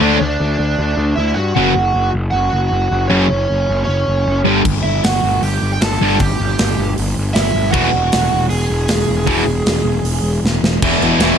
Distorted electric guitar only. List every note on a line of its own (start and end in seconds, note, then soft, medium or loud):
0.00 0.16 D3 loud
0.00 0.16 A3 loud
0.00 0.17 D4 loud
1.56 1.72 F#2 medium
1.56 1.72 C#3 loud
1.56 1.72 F#3 loud
3.10 3.26 F#2 medium
3.10 3.26 C#3 loud
3.10 3.26 F#3 loud
4.45 4.61 G2 loud
4.45 4.62 D3 loud
4.45 4.62 G3 loud
6.02 6.16 G2 medium
6.02 6.17 D3 medium
6.02 6.17 G3 medium
7.73 7.89 E2 loud
7.73 7.89 B2 loud
7.73 7.89 E3 loud
9.27 9.43 E2 medium
9.27 9.43 B2 loud
9.27 9.44 E3 loud
10.83 11.02 E2 loud
10.83 11.03 B2 medium
10.83 11.03 E3 loud
11.03 11.21 E2 medium
11.03 11.22 B2 medium
11.03 11.23 E3 medium
11.22 11.38 E2 loud
11.22 11.38 B2 loud
11.22 11.38 E3 loud